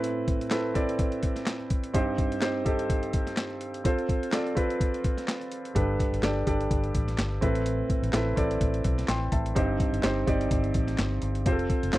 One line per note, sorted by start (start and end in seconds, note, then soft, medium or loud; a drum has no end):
0.00 0.48 A2 medium
0.00 0.44 C4 medium
0.00 0.41 E4 medium
0.00 0.41 A4 medium
0.00 0.42 B4 medium
0.00 closed hi-hat medium
0.28 kick medium
0.28 closed hi-hat soft
0.41 closed hi-hat soft
0.51 0.71 C4 medium
0.51 0.72 E4 medium
0.51 0.72 A4 medium
0.51 0.72 B4 medium
0.51 snare loud
0.51 clap medium
0.51 closed hi-hat medium
0.74 1.56 C4 medium
0.74 1.56 E4 medium
0.74 1.56 A4 medium
0.74 1.56 D5 medium
0.74 kick medium
0.74 closed hi-hat medium
0.89 closed hi-hat soft
0.99 kick medium
0.99 closed hi-hat medium
1.12 closed hi-hat soft
1.23 kick medium
1.23 closed hi-hat medium
1.36 snare soft
1.36 closed hi-hat soft
1.46 snare medium
1.46 clap medium
1.46 closed hi-hat medium
1.70 kick medium
1.70 closed hi-hat medium
1.84 closed hi-hat soft
1.94 2.62 G2 medium
1.94 2.35 C4 medium
1.94 2.35 D#4 medium
1.94 2.35 G4 medium
1.94 2.35 C5 medium
1.94 kick medium
1.94 closed hi-hat medium
2.18 kick medium
2.18 closed hi-hat soft
2.32 closed hi-hat soft
2.41 2.62 C4 medium
2.41 2.62 D#4 medium
2.41 2.63 G4 medium
2.41 2.63 C5 medium
2.41 snare medium
2.41 clap medium
2.41 closed hi-hat medium
2.65 3.46 C4 medium
2.65 3.46 D#4 medium
2.65 3.46 G4 medium
2.65 3.47 A4 medium
2.65 kick medium
2.65 closed hi-hat medium
2.79 closed hi-hat soft
2.90 kick medium
2.90 closed hi-hat medium
3.03 closed hi-hat soft
3.13 kick medium
3.13 closed hi-hat medium
3.27 snare soft
3.27 closed hi-hat soft
3.37 snare medium
3.37 clap medium
3.37 closed hi-hat medium
3.61 closed hi-hat medium
3.74 closed hi-hat soft
3.84 4.25 C4 medium
3.84 4.26 F4 medium
3.84 4.26 A4 medium
3.84 4.26 C5 medium
3.84 kick medium
3.84 closed hi-hat medium
3.99 closed hi-hat soft
4.09 kick medium
4.09 closed hi-hat soft
4.23 closed hi-hat soft
4.32 4.52 C4 medium
4.32 4.53 F4 medium
4.32 4.53 A4 medium
4.32 4.53 D5 medium
4.32 snare medium
4.32 clap medium
4.32 closed hi-hat medium
4.47 closed hi-hat soft
4.55 5.37 C4 medium
4.55 5.37 F4 medium
4.55 5.37 A4 medium
4.55 5.37 B4 medium
4.55 kick medium
4.55 closed hi-hat medium
4.70 closed hi-hat soft
4.80 kick medium
4.80 closed hi-hat medium
4.94 closed hi-hat soft
5.04 kick medium
5.04 closed hi-hat medium
5.18 snare soft
5.18 closed hi-hat soft
5.28 snare medium
5.28 clap medium
5.28 closed hi-hat medium
5.41 closed hi-hat soft
5.52 closed hi-hat medium
5.65 closed hi-hat soft
5.75 5.95 G1 medium
5.75 6.43 G2 medium
5.75 6.16 D4 medium
5.75 6.16 G4 medium
5.75 6.17 A4 medium
5.75 6.17 B4 medium
5.75 kick medium
5.75 closed hi-hat medium
6.00 kick medium
6.00 closed hi-hat medium
6.12 6.21 G1 medium
6.12 closed hi-hat soft
6.22 6.42 G1 medium
6.22 6.43 D4 medium
6.22 6.43 G4 medium
6.22 6.43 A4 medium
6.22 6.44 D5 medium
6.22 snare medium
6.22 clap medium
6.22 closed hi-hat medium
6.47 6.66 G1 medium
6.47 7.27 D4 medium
6.47 7.27 G4 medium
6.47 7.28 A4 medium
6.47 7.28 D5 medium
6.47 kick medium
6.47 closed hi-hat medium
6.61 closed hi-hat soft
6.71 6.90 G1 medium
6.71 kick medium
6.71 closed hi-hat medium
6.84 closed hi-hat soft
6.95 7.14 A1 medium
6.95 kick medium
6.95 closed hi-hat medium
7.08 snare soft
7.08 closed hi-hat soft
7.18 7.38 G1 medium
7.18 snare medium
7.18 clap medium
7.18 closed hi-hat medium
7.41 7.81 A1 medium
7.41 8.09 A2 medium
7.41 8.03 C4 medium
7.41 8.03 E4 medium
7.41 8.03 A4 medium
7.41 8.03 B4 medium
7.41 kick medium
7.41 closed hi-hat medium
7.55 closed hi-hat soft
7.66 closed hi-hat medium
7.90 kick medium
7.90 closed hi-hat soft
8.03 8.11 A1 medium
8.03 closed hi-hat soft
8.13 8.33 A1 medium
8.13 8.33 C4 medium
8.13 8.34 E4 medium
8.13 8.34 A4 medium
8.13 8.34 B4 medium
8.13 snare medium
8.13 clap medium
8.13 closed hi-hat medium
8.36 8.57 A1 medium
8.36 9.17 C4 medium
8.36 9.18 E4 medium
8.36 9.18 A4 medium
8.36 9.18 D5 medium
8.36 kick medium
8.36 closed hi-hat medium
8.51 closed hi-hat soft
8.61 8.80 A1 medium
8.61 kick medium
8.61 closed hi-hat medium
8.74 closed hi-hat soft
8.84 9.04 B1 medium
8.84 kick medium
8.84 closed hi-hat medium
8.98 snare soft
8.98 closed hi-hat soft
9.08 9.28 A1 medium
9.08 9.31 G5 soft
9.08 9.31 C6 medium
9.08 snare medium
9.08 clap medium
9.08 closed hi-hat medium
9.32 9.52 A1 medium
9.32 9.78 E5 soft
9.32 9.77 A5 medium
9.32 kick medium
9.32 closed hi-hat medium
9.46 closed hi-hat soft
9.55 9.75 G1 medium
9.55 10.23 G2 medium
9.55 9.96 C4 medium
9.55 9.96 D#4 medium
9.55 9.97 G4 medium
9.55 9.97 C5 medium
9.55 kick loud
9.55 closed hi-hat medium
9.80 kick medium
9.80 closed hi-hat medium
9.93 10.02 G1 medium
9.93 closed hi-hat soft
10.02 10.23 G1 medium
10.02 10.23 C4 medium
10.02 10.24 D#4 medium
10.02 10.24 G4 medium
10.02 10.24 C5 medium
10.02 snare loud
10.02 clap medium
10.02 closed hi-hat medium
10.26 10.47 G1 medium
10.26 11.07 C4 medium
10.26 11.08 D#4 medium
10.26 11.08 G4 medium
10.26 11.08 D5 medium
10.26 kick medium
10.26 closed hi-hat medium
10.41 closed hi-hat soft
10.51 10.70 G1 medium
10.51 kick medium
10.51 closed hi-hat medium
10.64 closed hi-hat soft
10.74 10.94 A1 medium
10.74 kick medium
10.74 closed hi-hat medium
10.88 snare soft
10.88 closed hi-hat soft
10.98 11.18 G1 medium
10.98 snare medium
10.98 clap medium
10.98 closed hi-hat medium
11.22 11.46 G1 medium
11.22 closed hi-hat medium
11.35 closed hi-hat soft
11.46 11.66 F1 medium
11.46 11.87 C4 medium
11.46 11.87 F4 medium
11.46 11.53 G4 medium
11.46 11.87 C5 medium
11.46 kick medium
11.46 closed hi-hat medium
11.52 11.90 A4 medium
11.59 closed hi-hat soft
11.70 kick medium
11.70 closed hi-hat medium
11.83 11.92 F1 medium
11.83 closed hi-hat soft
11.93 11.98 F1 medium
11.93 11.98 C4 medium
11.93 11.98 F4 medium
11.93 11.98 A4 medium
11.93 11.98 C5 medium
11.93 snare medium
11.93 clap medium
11.93 closed hi-hat medium